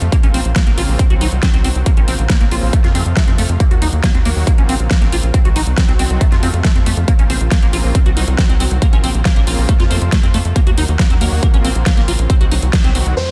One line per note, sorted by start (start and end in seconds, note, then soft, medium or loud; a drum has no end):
0.02 0.10 F2 medium
0.02 closed hi-hat soft
0.12 0.27 C#3 medium
0.12 0.27 A#3 medium
0.12 0.16 A#3 medium
0.12 0.27 C4 medium
0.12 0.27 F4 medium
0.12 kick loud
0.12 closed hi-hat medium
0.23 0.31 A#1 medium
0.23 0.27 C#4 medium
0.23 closed hi-hat soft
0.34 0.42 A#1 medium
0.34 0.40 C4 medium
0.34 open hi-hat loud
0.45 0.53 A#1 medium
0.45 closed hi-hat soft
0.55 0.63 C#3 medium
0.55 0.63 A#3 medium
0.55 0.62 A#3 medium
0.55 0.63 C4 medium
0.55 0.63 F4 medium
0.55 kick loud
0.55 snare loud
0.55 closed hi-hat medium
0.66 0.75 A#1 medium
0.66 0.74 C#3 medium
0.66 0.74 A#3 medium
0.66 0.71 A#3 medium
0.66 0.74 C4 medium
0.66 0.74 F4 medium
0.66 closed hi-hat soft
0.77 0.86 A#1 loud
0.77 0.93 C#3 medium
0.77 0.93 A#3 medium
0.77 0.93 C4 medium
0.77 0.93 F4 medium
0.77 0.82 F4 loud
0.77 open hi-hat loud
0.88 0.97 A#1 medium
0.99 1.07 D#3 medium
0.99 1.07 F#3 medium
0.99 1.03 C4 medium
0.99 1.07 C4 medium
0.99 1.07 F#4 medium
0.99 kick loud
0.99 closed hi-hat medium
1.10 1.18 C2 medium
1.10 1.25 D#3 medium
1.10 1.25 F#3 medium
1.10 1.25 C4 medium
1.10 1.25 F#4 medium
1.10 1.14 F#4 medium
1.10 closed hi-hat soft
1.21 1.29 C2 loud
1.21 1.27 D#4 medium
1.21 open hi-hat loud
1.32 1.40 C2 medium
1.32 closed hi-hat soft
1.43 1.58 D#3 medium
1.43 1.58 F#3 medium
1.43 1.58 C4 medium
1.43 1.49 C4 medium
1.43 1.58 F#4 medium
1.43 kick loud
1.43 snare loud
1.43 closed hi-hat medium
1.54 1.62 C2 medium
1.54 1.58 C4 medium
1.54 closed hi-hat soft
1.64 1.73 C2 loud
1.64 1.69 C4 loud
1.64 open hi-hat loud
1.75 1.84 C2 medium
1.75 closed hi-hat soft
1.86 2.01 C#3 medium
1.86 2.01 A#3 medium
1.86 1.90 A#3 medium
1.86 2.01 C4 medium
1.86 2.01 F4 medium
1.86 kick loud
1.86 closed hi-hat medium
1.97 2.05 A#1 medium
1.97 2.01 C#4 medium
1.97 closed hi-hat soft
2.08 2.16 A#1 medium
2.08 2.14 C4 medium
2.08 open hi-hat loud
2.19 2.27 A#1 medium
2.19 closed hi-hat soft
2.30 2.37 C#3 medium
2.30 2.37 A#3 medium
2.30 2.36 A#3 medium
2.30 2.37 C4 medium
2.30 2.37 F4 medium
2.30 kick loud
2.30 snare loud
2.30 closed hi-hat medium
2.40 2.49 A#1 medium
2.40 2.48 C#3 medium
2.40 2.48 A#3 medium
2.40 2.45 A#3 medium
2.40 2.48 C4 medium
2.40 2.48 F4 medium
2.40 closed hi-hat soft
2.51 2.60 A#1 medium
2.51 2.67 C#3 medium
2.51 2.67 A#3 medium
2.51 2.67 C4 medium
2.51 2.67 F4 medium
2.51 2.56 F4 loud
2.51 open hi-hat loud
2.62 2.71 A#1 medium
2.73 2.81 C3 medium
2.73 2.81 F3 medium
2.73 2.81 A3 medium
2.73 2.77 A3 medium
2.73 2.81 F4 medium
2.73 kick loud
2.73 closed hi-hat medium
2.84 2.92 F2 medium
2.84 2.99 C3 medium
2.84 2.99 F3 medium
2.84 2.99 A3 medium
2.84 2.99 F4 medium
2.84 2.88 F4 medium
2.84 snare soft
2.84 closed hi-hat soft
2.95 3.03 F2 medium
2.95 3.01 C4 medium
2.95 open hi-hat loud
3.06 3.14 F2 medium
3.06 closed hi-hat soft
3.17 3.32 C3 medium
3.17 3.32 F3 medium
3.17 3.32 A3 medium
3.17 3.23 A3 medium
3.17 3.32 F4 medium
3.17 kick loud
3.17 snare loud
3.17 closed hi-hat medium
3.28 3.36 F2 medium
3.28 3.32 C4 medium
3.28 closed hi-hat soft
3.38 3.47 F2 loud
3.38 3.42 A3 loud
3.38 open hi-hat loud
3.49 3.57 F2 medium
3.49 closed hi-hat soft
3.60 3.76 D#3 medium
3.60 3.76 F#3 medium
3.60 3.64 A#3 medium
3.60 3.76 A#3 medium
3.60 3.76 F#4 medium
3.60 kick loud
3.60 closed hi-hat medium
3.71 3.79 D#2 medium
3.71 3.75 F#4 medium
3.71 closed hi-hat soft
3.82 3.90 D#2 medium
3.82 3.88 D#4 medium
3.82 open hi-hat loud
3.93 4.01 D#2 medium
3.93 closed hi-hat soft
4.04 4.11 D#3 medium
4.04 4.11 F#3 medium
4.04 4.11 A#3 medium
4.04 4.10 A#3 medium
4.04 4.11 F#4 medium
4.04 kick loud
4.04 snare loud
4.04 closed hi-hat medium
4.14 4.23 D#2 medium
4.14 4.22 D#3 medium
4.14 4.22 F#3 medium
4.14 4.22 A#3 medium
4.14 4.19 C4 medium
4.14 4.22 F#4 medium
4.14 closed hi-hat soft
4.25 4.34 D#2 loud
4.25 4.40 D#3 medium
4.25 4.40 F#3 medium
4.25 4.40 A#3 medium
4.25 4.29 A#3 loud
4.25 4.41 F#4 medium
4.25 open hi-hat loud
4.36 4.44 D#2 medium
4.47 4.55 C#3 medium
4.47 4.55 A#3 medium
4.47 4.51 A#3 medium
4.47 4.55 C4 medium
4.47 4.55 F4 medium
4.47 kick loud
4.47 closed hi-hat medium
4.58 4.66 A#1 medium
4.58 4.73 C#3 medium
4.58 4.73 A#3 medium
4.58 4.73 C4 medium
4.58 4.62 C#4 medium
4.58 4.73 F4 medium
4.58 closed hi-hat soft
4.69 4.77 A#1 medium
4.69 4.75 C4 medium
4.69 open hi-hat loud
4.80 4.88 A#1 medium
4.80 closed hi-hat soft
4.91 5.06 C#3 medium
4.91 5.06 A#3 medium
4.91 4.97 A#3 medium
4.91 5.06 C4 medium
4.91 5.06 F4 medium
4.91 kick loud
4.91 snare loud
4.91 closed hi-hat medium
5.01 5.10 A#1 medium
5.01 5.06 A#3 medium
5.01 snare soft
5.01 closed hi-hat soft
5.12 5.20 A#1 loud
5.12 5.16 F4 loud
5.12 open hi-hat loud
5.23 5.31 A#1 medium
5.23 closed hi-hat soft
5.34 5.50 D#3 medium
5.34 5.50 F#3 medium
5.34 5.38 C4 medium
5.34 5.49 C4 medium
5.34 5.49 F#4 medium
5.34 kick loud
5.34 closed hi-hat medium
5.45 5.53 C2 medium
5.45 5.49 F#4 medium
5.45 closed hi-hat soft
5.56 5.64 A#1 medium
5.56 5.62 D#4 medium
5.56 open hi-hat loud
5.67 5.75 C2 medium
5.67 closed hi-hat soft
5.77 5.85 D#3 medium
5.77 5.85 F#3 medium
5.77 5.84 C4 medium
5.77 5.85 C4 medium
5.77 5.85 F#4 medium
5.77 kick loud
5.77 snare loud
5.77 closed hi-hat medium
5.88 5.97 C2 medium
5.88 5.96 D#3 medium
5.88 5.96 F#3 medium
5.88 5.92 C4 medium
5.88 5.96 C4 medium
5.88 5.96 F#4 medium
5.88 closed hi-hat soft
5.99 6.07 C2 loud
5.99 6.15 D#3 medium
5.99 6.15 F#3 medium
5.99 6.03 C4 loud
5.99 6.15 C4 medium
5.99 6.15 F#4 medium
5.99 open hi-hat loud
6.10 6.18 C2 medium
6.10 closed hi-hat soft
6.21 6.29 C3 medium
6.21 6.29 F3 medium
6.21 6.25 A3 medium
6.21 6.29 A3 medium
6.21 6.29 F4 medium
6.21 kick loud
6.21 closed hi-hat medium
6.32 6.40 F2 medium
6.32 6.47 C3 medium
6.32 6.47 F3 medium
6.32 6.47 A3 medium
6.32 6.36 F4 medium
6.32 6.47 F4 medium
6.32 snare soft
6.32 closed hi-hat soft
6.43 6.51 F2 loud
6.43 6.49 C4 medium
6.43 open hi-hat loud
6.54 6.62 F2 medium
6.54 closed hi-hat soft
6.64 6.80 C3 medium
6.64 6.80 F3 medium
6.64 6.71 A3 medium
6.64 6.80 A3 medium
6.64 6.80 F4 medium
6.64 kick loud
6.64 snare loud
6.64 closed hi-hat medium
6.75 6.84 F2 medium
6.75 6.79 C4 medium
6.75 closed hi-hat soft
6.86 6.94 F2 loud
6.86 6.90 A3 loud
6.86 open hi-hat loud
6.97 7.05 F2 medium
6.97 closed hi-hat soft
7.08 7.23 C#3 medium
7.08 7.23 A#3 medium
7.08 7.12 A#3 medium
7.08 7.23 C4 medium
7.08 7.23 F4 medium
7.08 kick loud
7.08 closed hi-hat medium
7.19 7.27 A#1 medium
7.19 7.23 C#4 medium
7.19 closed hi-hat soft
7.30 7.38 A#1 medium
7.30 7.36 C4 medium
7.30 open hi-hat loud
7.40 7.49 A#1 medium
7.40 closed hi-hat soft
7.51 7.59 C#3 medium
7.51 7.59 A#3 medium
7.51 7.58 A#3 medium
7.51 7.59 C4 medium
7.51 7.59 F4 medium
7.51 kick loud
7.51 snare loud
7.51 closed hi-hat medium
7.62 7.71 A#1 medium
7.62 7.70 C#3 medium
7.62 7.70 A#3 medium
7.62 7.66 A#3 medium
7.62 7.70 C4 medium
7.62 7.70 F4 medium
7.62 closed hi-hat soft
7.73 7.81 A#1 loud
7.73 7.88 C#3 medium
7.73 7.88 A#3 medium
7.73 7.88 C4 medium
7.73 7.88 F4 medium
7.73 7.77 F4 loud
7.73 open hi-hat loud
7.84 7.92 A#1 medium
7.95 8.03 D#3 medium
7.95 8.03 F#3 medium
7.95 7.99 C4 medium
7.95 8.03 C4 medium
7.95 8.03 F#4 medium
7.95 kick loud
7.95 closed hi-hat medium
8.06 8.14 C2 medium
8.06 8.21 D#3 medium
8.06 8.21 F#3 medium
8.06 8.21 C4 medium
8.06 8.21 F#4 medium
8.06 8.10 F#4 medium
8.06 closed hi-hat soft
8.17 8.25 C2 medium
8.17 8.23 D#4 medium
8.17 open hi-hat loud
8.27 8.36 C2 medium
8.27 closed hi-hat soft
8.38 8.53 D#3 medium
8.38 8.53 F#3 medium
8.38 8.53 C4 medium
8.38 8.45 C4 medium
8.38 8.54 F#4 medium
8.38 kick loud
8.38 snare loud
8.38 closed hi-hat medium
8.49 8.57 C2 medium
8.49 8.53 C4 medium
8.49 closed hi-hat soft
8.60 8.68 C2 loud
8.60 8.64 C4 loud
8.60 open hi-hat loud
8.71 8.79 C2 medium
8.71 closed hi-hat soft
8.82 8.97 C#3 medium
8.82 8.97 A#3 medium
8.82 8.86 A#3 medium
8.82 8.97 C4 medium
8.82 8.97 F4 medium
8.82 kick loud
8.82 closed hi-hat medium
8.93 9.01 A#1 medium
8.93 8.97 C#4 medium
8.93 closed hi-hat soft
9.04 9.12 A#1 medium
9.04 9.10 C4 medium
9.04 open hi-hat medium
9.15 9.23 A#1 medium
9.15 closed hi-hat soft
9.25 9.33 C#3 medium
9.25 9.33 A#3 medium
9.25 9.31 A#3 medium
9.25 9.33 C4 medium
9.25 9.33 F4 medium
9.25 kick loud
9.25 snare loud
9.25 closed hi-hat medium
9.36 9.45 A#1 medium
9.36 9.44 C#3 medium
9.36 9.44 A#3 medium
9.36 9.40 A#3 medium
9.36 9.44 C4 medium
9.36 9.44 F4 medium
9.36 closed hi-hat soft
9.47 9.55 A#1 loud
9.47 9.62 C#3 medium
9.47 9.62 A#3 medium
9.47 9.62 C4 medium
9.47 9.62 F4 medium
9.47 9.51 F4 loud
9.47 open hi-hat loud
9.58 9.66 A#1 medium
9.68 9.76 C3 medium
9.68 9.76 F3 medium
9.68 9.76 A3 medium
9.68 9.73 A3 medium
9.68 9.76 F4 medium
9.68 kick loud
9.68 closed hi-hat medium
9.79 9.88 F2 medium
9.79 9.95 C3 medium
9.79 9.95 F3 medium
9.79 9.95 A3 medium
9.79 9.95 F4 medium
9.79 9.84 F4 medium
9.79 snare soft
9.79 closed hi-hat soft
9.91 9.99 F2 loud
9.91 9.97 C4 medium
9.91 open hi-hat medium
10.01 10.10 F2 medium
10.01 closed hi-hat soft
10.12 10.27 C3 medium
10.12 10.27 F3 medium
10.12 10.27 A3 medium
10.12 10.18 A3 medium
10.12 10.27 F4 medium
10.12 kick loud
10.12 snare loud
10.12 closed hi-hat medium
10.23 10.31 F2 medium
10.23 10.27 C4 medium
10.23 closed hi-hat soft
10.34 10.42 F2 loud
10.34 10.38 A3 loud
10.34 open hi-hat loud
10.45 10.53 F2 medium
10.45 closed hi-hat soft
10.56 10.71 D#3 medium
10.56 10.71 F#3 medium
10.56 10.71 A#3 medium
10.56 10.60 A#3 medium
10.56 10.71 F#4 medium
10.56 kick loud
10.56 closed hi-hat medium
10.67 10.75 D#2 medium
10.67 10.71 F#4 medium
10.67 closed hi-hat soft
10.78 10.86 D#2 medium
10.78 10.84 D#4 medium
10.78 open hi-hat loud
10.88 10.97 D#2 medium
10.88 closed hi-hat soft
10.99 11.07 D#3 medium
10.99 11.07 F#3 medium
10.99 11.07 A#3 medium
10.99 11.05 A#3 medium
10.99 11.07 F#4 medium
10.99 kick loud
10.99 snare loud
10.99 closed hi-hat medium
11.10 11.18 D#2 medium
11.10 11.18 D#3 medium
11.10 11.18 F#3 medium
11.10 11.18 A#3 medium
11.10 11.14 C4 medium
11.10 11.18 F#4 medium
11.10 closed hi-hat soft
11.21 11.29 D#2 loud
11.21 11.36 D#3 medium
11.21 11.36 F#3 medium
11.21 11.36 A#3 medium
11.21 11.25 A#3 loud
11.21 11.36 F#4 medium
11.21 open hi-hat loud
11.32 11.40 D#2 medium
11.43 11.50 C#3 medium
11.43 11.50 A#3 medium
11.43 11.47 A#3 medium
11.43 11.50 C4 medium
11.43 11.50 F4 medium
11.43 kick loud
11.43 closed hi-hat medium
11.54 11.62 A#1 medium
11.54 11.69 C#3 medium
11.54 11.69 A#3 medium
11.54 11.69 C4 medium
11.54 11.58 C#4 medium
11.54 11.69 F4 medium
11.54 closed hi-hat soft
11.64 11.73 A#1 medium
11.64 11.71 C4 medium
11.64 open hi-hat loud
11.75 11.84 A#1 medium
11.75 closed hi-hat soft
11.86 12.01 C#3 medium
11.86 11.92 A#3 medium
11.86 12.01 A#3 medium
11.86 12.01 C4 medium
11.86 12.02 F4 medium
11.86 kick loud
11.86 snare loud
11.86 closed hi-hat loud
11.97 12.05 A#1 medium
11.97 12.01 A#3 medium
11.97 snare soft
11.97 closed hi-hat soft
12.08 12.16 A#1 loud
12.08 12.12 F4 loud
12.08 open hi-hat loud
12.19 12.27 A#1 medium
12.19 closed hi-hat soft
12.30 12.45 D#3 medium
12.30 12.45 F#3 medium
12.30 12.34 C4 medium
12.30 12.45 C4 medium
12.30 12.45 F#4 medium
12.30 kick loud
12.30 closed hi-hat loud
12.41 12.49 C2 medium
12.41 12.45 F#4 medium
12.41 closed hi-hat soft
12.52 12.60 C2 medium
12.52 12.54 D#4 medium
12.52 open hi-hat loud
12.62 12.71 C2 medium
12.62 closed hi-hat soft
12.73 12.81 D#3 medium
12.73 12.81 F#3 medium
12.73 12.81 C4 medium
12.73 12.76 F#4 medium
12.73 12.81 F#4 medium
12.73 kick loud
12.73 snare loud
12.73 closed hi-hat loud
12.84 12.92 C2 medium
12.84 12.92 D#3 medium
12.84 12.92 F#3 medium
12.84 12.90 C4 medium
12.84 12.92 C4 medium
12.84 12.92 F#4 medium
12.84 closed hi-hat soft
12.95 13.03 C2 loud
12.95 13.10 D#3 medium
12.95 13.10 F#3 medium
12.95 12.97 C4 loud
12.95 13.10 C4 medium
12.95 13.10 F#4 medium
12.95 open hi-hat loud
13.06 13.14 C2 medium
13.06 closed hi-hat soft
13.17 13.31 F2 medium
13.17 13.24 C3 medium
13.17 13.24 F3 medium
13.17 13.24 A3 medium
13.17 13.24 F4 medium
13.17 13.31 C5 medium
13.17 downlifter medium
13.28 13.31 C3 medium
13.28 13.31 F3 medium
13.28 13.31 A3 medium
13.28 13.31 F4 medium